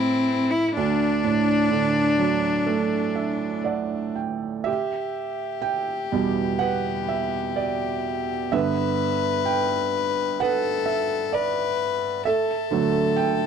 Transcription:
Already playing: A2 E3 C4 E4
0.51 E4
0.75 D2 D4
1.24 A2
1.70 D3
2.18 F#3
2.66 A3
3.16 E5
3.64 D5 F#5
4.16 G5
4.64 G4 E5
5.62 G5
6.12 E2 B2 G3
6.59 B4 F#5
7.09 E5
7.56 D5
8.52 G2 D3 B3 B4 E5
9.45 G5
10.40 A4 B4 F#5
10.86 E5
11.33 B4 D5
12.25 A4 E5
12.71 D3 F#3 A3
13.16 G5

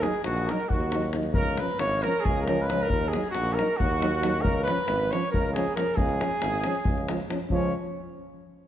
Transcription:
0.02 F#3 D#4 G#4, davul high
0.14 davul high
0.24 A#1 F#4, davul high
0.38 davul high
0.47 F#3 D#4 A#4, davul high
0.60 davul high
0.69 D#2 F#4, davul low
0.81 davul high
0.92 F#3 D#4, davul high
1.02 davul high
1.13 D#4, davul high
1.17 F#3
1.23 davul high
1.34 C#2 A#4, davul low
1.57 F3 C#4 B4, davul high
1.68 davul high
1.79 G#1 C#5, davul high
2.03 F3 C#4 A#4, davul high
2.20 G#4
2.25 C#2 G#4, davul low
2.37 davul high
2.42 A#4
2.47 F3 C#4, davul high
2.62 B4
2.67 F3 B4, davul high
2.72 C#4
2.82 A#4
2.90 D#2 A#4, davul low
3.08 G#4
3.13 F#3 D#4 G#4, davul high
3.24 davul high
3.31 F#4, davul high
3.36 A#1
3.54 A#4
3.58 F#3 D#4, davul high
3.77 D#2 F#4, davul low
3.92 davul high
4.01 F#3 D#4, davul high
4.22 F#3 D#4, davul high
4.41 C#2 A#4, davul low
4.63 F3 B4
4.68 C#4, davul high
4.79 davul high
4.87 G#1, davul high
5.11 F3 C#4 C#5, davul high
5.32 C#2 A#4, davul low
5.45 davul high
5.53 F3 G#4, davul high
5.57 C#4
5.75 F3 C#4 A#4, davul high
5.96 C#2 G#4, davul low
6.09 davul high
6.20 F3 C#4, davul high
6.31 davul high
6.41 G#1, davul high
6.54 davul high
6.64 F3 C#4, davul high
6.75 davul high
6.85 C#2, davul low
6.98 davul high
7.08 F3 C#4, davul high
7.20 davul high
7.30 F3 C#4, davul high
7.40 davul high
7.50 C#2 F3 C#4 C#5, davul low

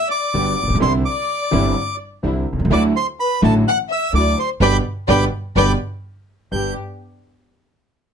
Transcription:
0.09 D5 D6
0.33 G1 G2 D3 G3 B3 F#4 G4
0.63 A1
0.68 A#1
0.74 B1
0.80 C2 C3 D3 G3 C4 D4 E4 C5 C6
1.05 D5 D6
1.51 G1 G2 D3 G3 C4 D4 E4
2.23 C2 C3 D3 G3 C4 D4 E4
2.53 B1
2.58 C2
2.65 C#2
2.70 D2 D3 F#3 A3 D4 E4 F#4 D5 D6
2.96 C5 C6
3.20 B4 B5
3.42 A1 A2 D3 F#3 A3 D4 E4 F#4 A4 A5
3.68 F#5 F#6
3.90 E5 E6
4.13 D2 D3 F#3 A3 D4 E4 F#4 D5 D6
4.38 C5 C6
4.60 G1 B2 D3 G3 B3 D4 G4 B4 D5 G5 B5 D6 G6
5.08 G1 B2 D3 G3 B3 D4 G4 B4 D5 G5 B5 D6 G6
5.56 G1 B2 D3 G3 B3 D4 G4 B4 D5 G5 B5 D6 G6
6.52 G1 G2 B3 D4 G4 G6

